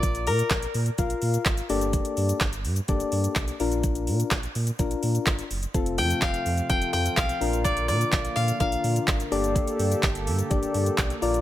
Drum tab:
HH |xxoxxxoxxxoxxxox|xxoxxxoxxxoxxxox|xxoxxxoxxxoxxxox|xxoxxxoxxxoxxxox|
SH |xxxxxxxxxxxxxxxx|xxxxxxxxxxxxxxxx|xxxxxxxxxxxxxxxx|xxxxxxxxxxxxxxxx|
CP |----x-------x---|----x-------x---|----x-------x---|----x-------x---|
SD |----o-------o---|----o-------o---|----o-------o---|----o-------o---|
BD |o---o---o---o---|o---o---o---o---|o---o---o---o---|o---o---o---o---|

HH |xxoxxxoxxxoxxxox|xxoxxxoxxxoxxxox|
SH |xxxxxxxxxxxxxxxx|xxxxxxxxxxxxxxxx|
CP |----x-------x---|----x-------x---|
SD |----o-------o---|----o-------o---|
BD |o---o---o---o---|o---o---o---o---|